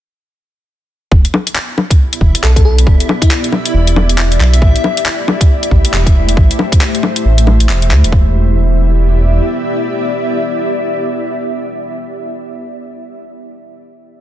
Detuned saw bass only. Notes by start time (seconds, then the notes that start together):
1.12 E1
2.21 E1
2.44 B1
2.65 B1
2.87 E1
3.74 E1
4.40 B1
4.62 A1
5.71 A1
5.93 E1
6.15 E1
6.37 A1
7.25 A1
7.69 E1
7.91 D2
8.04 E1
8.13 E1